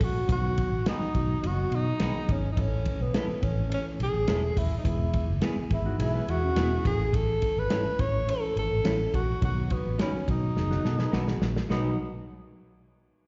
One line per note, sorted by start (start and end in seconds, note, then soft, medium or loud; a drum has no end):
0.00 0.21 A#1 loud
0.00 0.13 E3 medium
0.00 0.13 A3 medium
0.00 0.14 C#4 medium
0.00 0.14 E4 medium
0.00 0.14 A4 medium
0.00 kick loud
0.00 open hi-hat medium
0.00 ride medium
0.04 0.31 F#4 loud
0.28 0.60 B1 loud
0.28 0.70 D#3 loud
0.28 0.70 F#3 loud
0.28 0.71 B3 medium
0.28 0.71 D#4 medium
0.28 0.71 F#4 loud
0.28 kick loud
0.28 hi-hat pedal medium
0.28 ride medium
0.32 0.84 F#4 loud
0.58 kick medium
0.58 ride medium
0.72 0.82 A1 medium
0.85 1.06 D#3 medium
0.85 1.07 F#3 medium
0.85 1.07 B3 medium
0.85 0.96 D#4 medium
0.85 1.07 D#4 medium
0.85 1.48 D#4 loud
0.85 1.07 F#4 medium
0.85 0.97 F#4 medium
0.85 0.97 B4 medium
0.85 snare loud
0.85 ride medium
1.00 muted fingered electric bass stroke soft
1.00 snare soft
1.13 1.35 B1 loud
1.13 1.35 D#3 medium
1.13 1.35 F#3 medium
1.13 1.35 B3 medium
1.13 1.36 D#4 medium
1.13 1.36 F#4 medium
1.13 kick medium
1.13 ride medium
1.42 1.64 F#1 medium
1.42 1.84 D#3 medium
1.42 1.84 F#3 medium
1.42 1.85 B3 medium
1.42 1.85 D#4 medium
1.42 1.85 F#4 medium
1.42 ride medium
1.47 1.76 F#4 medium
1.71 1.92 B2 loud
1.71 2.33 D#4 loud
1.71 ride medium
1.98 2.11 B1 medium
1.98 2.41 D#3 medium
1.98 2.41 F#3 medium
1.98 2.42 B3 medium
1.98 2.42 D#4 medium
1.98 2.10 D#4 medium
1.98 2.11 F#4 medium
1.98 2.42 G#4 medium
1.98 2.11 B4 medium
1.98 snare loud
1.98 ride medium
2.29 2.49 G#1 medium
2.29 2.52 C#4 medium
2.29 kick loud
2.29 ride medium
2.52 2.98 E3 medium
2.52 2.98 A3 medium
2.52 2.62 D#4 medium
2.56 2.88 A1 loud
2.56 2.99 C#4 medium
2.56 2.99 E4 medium
2.56 2.99 A4 loud
2.56 kick medium
2.56 ride medium
2.60 3.04 C#4 medium
2.85 kick medium
2.85 ride medium
3.00 3.10 B1 loud
3.00 3.45 B3 medium
3.13 3.34 E3 medium
3.13 3.35 A3 medium
3.13 3.35 C#4 medium
3.13 3.24 C#4 medium
3.13 3.35 E4 medium
3.13 3.25 E4 loud
3.13 3.35 A4 medium
3.13 3.25 A4 loud
3.13 snare loud
3.13 ride medium
3.28 muted fingered electric bass stroke medium
3.28 snare soft
3.41 3.74 A1 loud
3.41 3.63 E3 medium
3.41 3.63 A3 medium
3.41 3.63 C#4 medium
3.41 3.72 C#4 medium
3.41 3.63 E4 medium
3.41 3.64 A4 medium
3.41 kick medium
3.41 ride medium
3.69 4.12 E3 medium
3.69 4.12 A3 medium
3.69 4.12 C#4 medium
3.69 4.12 E4 medium
3.69 4.13 A4 medium
3.69 ride medium
3.74 3.86 C#4 medium
4.00 4.10 B1 loud
4.00 4.60 G#4 loud
4.00 ride medium
4.14 4.24 A1 medium
4.27 4.49 E1 medium
4.27 4.70 E3 medium
4.27 4.70 A3 medium
4.27 4.38 C#4 medium
4.27 4.70 C#4 medium
4.27 4.38 E4 medium
4.27 4.70 E4 medium
4.27 4.39 A4 loud
4.27 4.71 A4 medium
4.27 snare loud
4.27 ride medium
4.57 4.77 D#1 loud
4.57 4.78 E4 medium
4.57 kick loud
4.57 open hi-hat medium
4.57 ride medium
4.78 4.87 D#4 medium
4.83 5.16 E1 loud
4.83 5.26 E3 loud
4.83 5.26 G#3 medium
4.83 5.27 B3 medium
4.83 5.27 E4 loud
4.83 5.28 E4 medium
4.83 5.27 G#4 loud
4.83 kick medium
4.83 hi-hat pedal medium
4.83 ride medium
5.13 kick medium
5.13 ride medium
5.28 5.38 F#1 loud
5.40 5.62 E3 loud
5.40 5.62 G#3 medium
5.40 5.63 B3 medium
5.40 5.52 B3 medium
5.40 5.63 E4 medium
5.40 5.53 E4 loud
5.40 5.63 G#4 loud
5.40 5.53 G#4 loud
5.40 snare loud
5.40 ride medium
5.57 muted fingered electric bass stroke soft
5.70 5.91 G#1 loud
5.70 5.91 E3 medium
5.70 5.91 G#3 medium
5.70 5.91 B3 medium
5.70 5.92 E4 medium
5.70 5.99 E4 medium
5.70 5.92 G#4 medium
5.70 kick medium
5.70 ride medium
5.86 5.99 D#4 medium
5.86 5.99 F#4 medium
5.98 6.20 B1 medium
5.98 6.41 E3 medium
5.98 6.41 G#3 medium
5.98 6.41 B3 medium
5.98 6.41 E4 medium
5.98 6.13 E4 medium
5.98 6.32 E4 medium
5.98 6.41 G#4 medium
5.98 6.13 G#4 medium
5.98 ride medium
6.14 6.27 G#4 medium
6.14 6.27 B4 medium
6.28 6.49 E2 loud
6.28 6.41 E4 medium
6.28 6.86 F#4 loud
6.28 6.42 G#4 medium
6.28 ride medium
6.43 6.83 C#4 medium
6.43 6.83 E4 medium
6.56 6.77 E1 loud
6.56 6.83 E3 medium
6.56 6.85 G#3 medium
6.56 6.66 B3 medium
6.56 6.85 B3 medium
6.56 6.67 E4 medium
6.56 6.84 E4 medium
6.56 6.67 G#4 medium
6.56 6.86 G#4 medium
6.56 snare loud
6.56 ride medium
6.85 7.37 A1 loud
6.85 7.53 E3 medium
6.85 7.53 A3 medium
6.85 7.53 C#4 medium
6.85 7.54 E4 medium
6.85 7.17 G#4 loud
6.85 7.54 A4 medium
6.85 kick loud
6.85 ride medium
7.13 7.60 A4 loud
7.13 kick loud
7.13 ride medium
7.42 kick medium
7.42 ride medium
7.56 7.67 G#1 medium
7.56 8.02 B4 loud
7.70 7.91 E3 medium
7.70 7.91 A3 medium
7.70 7.80 C#4 loud
7.70 7.91 C#4 medium
7.70 7.81 E4 loud
7.70 7.91 E4 medium
7.70 7.81 A4 loud
7.70 7.92 A4 medium
7.70 snare loud
7.70 ride medium
7.85 muted fingered electric bass stroke soft
7.98 8.30 A1 loud
7.98 8.20 E3 medium
7.98 8.20 A3 medium
7.98 8.20 C#4 medium
7.98 8.20 E4 medium
7.98 8.21 A4 medium
7.98 8.32 C#5 loud
7.98 kick medium
7.98 ride medium
8.27 8.69 E3 medium
8.27 8.69 A3 medium
8.27 8.69 C#4 medium
8.27 8.70 E4 medium
8.27 8.70 A4 medium
8.27 8.57 A4 loud
8.27 ride medium
8.56 8.66 G#1 medium
8.56 9.16 A4 loud
8.56 ride medium
8.71 8.81 A1 medium
8.84 9.05 A1 medium
8.84 9.26 E3 medium
8.84 9.26 A3 medium
8.84 8.94 C#4 medium
8.84 9.26 C#4 medium
8.84 8.95 E4 medium
8.84 9.27 E4 medium
8.84 8.95 A4 loud
8.84 9.27 A4 medium
8.84 snare loud
8.84 ride medium
9.13 9.34 A#1 loud
9.13 9.42 F#4 loud
9.13 kick medium
9.13 ride medium
9.41 9.73 B1 loud
9.41 9.83 D#3 loud
9.41 9.84 F#3 medium
9.41 9.84 B3 medium
9.41 9.84 D#4 medium
9.41 9.84 F#4 loud
9.41 9.74 F#4 loud
9.41 kick loud
9.41 ride medium
9.70 10.00 B3 medium
9.70 kick medium
9.70 ride medium
9.85 9.95 A1 medium
9.98 10.20 D#3 medium
9.98 10.20 F#3 medium
9.98 10.20 B3 medium
9.98 10.26 C#4 medium
9.98 10.09 D#4 medium
9.98 10.20 D#4 medium
9.98 10.09 F#4 medium
9.98 10.20 F#4 medium
9.98 10.09 B4 medium
9.98 snare loud
9.98 ride medium
10.14 muted fingered electric bass stroke soft
10.27 10.57 B1 medium
10.27 10.48 D#3 medium
10.27 10.49 F#3 medium
10.27 10.49 B3 medium
10.27 10.49 D#4 medium
10.27 11.39 D#4 medium
10.27 10.49 F#4 medium
10.27 kick medium
10.27 ride medium
10.56 10.76 F#1 medium
10.56 10.98 D#3 medium
10.56 10.98 F#3 medium
10.56 10.98 B3 medium
10.56 10.98 D#4 medium
10.56 10.99 G#4 medium
10.56 snare medium
10.71 10.84 D#4 medium
10.71 10.84 F#4 medium
10.71 snare medium
10.85 11.05 B2 loud
10.85 10.99 F#4 medium
10.85 10.98 A4 medium
10.85 snare medium
10.99 11.67 G#4 medium
10.99 11.67 B4 medium
10.99 snare medium
11.12 11.34 B1 loud
11.12 11.54 D#3 medium
11.12 11.54 F#3 medium
11.12 11.55 B3 medium
11.12 11.22 D#4 medium
11.12 11.55 D#4 medium
11.12 11.23 F#4 medium
11.12 11.55 F#4 loud
11.12 11.23 B4 loud
11.12 snare loud
11.28 snare medium
11.41 11.62 A#1 loud
11.41 snare loud
11.56 snare medium
11.69 11.96 B1 loud
11.69 11.97 F#3 medium
11.69 11.97 B3 medium
11.69 11.86 D#4 medium
11.69 11.97 D#4 medium
11.69 11.87 F#4 medium
11.69 11.97 F#4 medium
11.69 11.87 B4 loud
11.69 snare medium